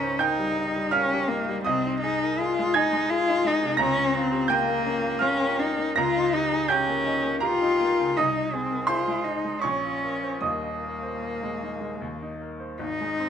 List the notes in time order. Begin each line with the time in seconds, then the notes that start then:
Already playing: C#2 C#4 D#4 A#4 A#5 A#6
0.03 C5
0.19 D#4 A#4 G5 G6
0.39 G3
0.58 D#4
0.76 G3
0.91 C#4 A#4 F5 F6
1.13 G4
1.29 A#3 D#4
1.49 G3
1.65 C2 C4 D#5 D#6
1.86 D#4
2.01 D#4 G#4
2.23 A#4
2.40 F4 G#4
2.59 G#3
2.74 D#4 G#5 G#6
2.93 G#3
3.10 F4 G#4
3.28 D#4
3.45 G#3 D#4
3.62 C3
3.77 C#2 A#5 A#6
3.82 C#4
3.97 C#4
4.15 C4 F4
4.32 G4
4.48 A#3 F4 G5 G6
4.68 A#3
4.86 C#4
5.02 A#3
5.19 C#4 F4 F5 F6
5.40 A#4
5.59 C#4 D#4
5.77 A#3
5.96 C#2 F4 A#5 A#6
6.16 D#4
6.34 D#4 G4
6.52 G#4
6.69 C#4 G4 G5 G6
6.88 A#3
7.06 D#4
7.24 A#3
7.40 F4 G4 A#4 A#5
7.61 D#4
7.81 A#3
8.00 C#3
8.17 C2 D#4 D#5 D#6
8.36 D#4
8.53 C4 G#4
8.71 A#4
8.87 F4 G#4 C5 C6
9.08 G#3
9.25 D#4
9.45 G#3
9.61 A#1 C#4 C#5 C#6
9.84 F4
10.04 A#4
10.23 C5
10.41 D#1 D#2 A#3 D#5 D#6
10.65 D#4
10.83 A#4
11.03 C5
11.24 A#4
11.43 G#3
11.63 D#4
11.81 G#3
12.02 D#2
12.22 D#4
12.41 A#4
12.60 C5
12.79 G#1 D#4
13.01 G#3
13.19 C4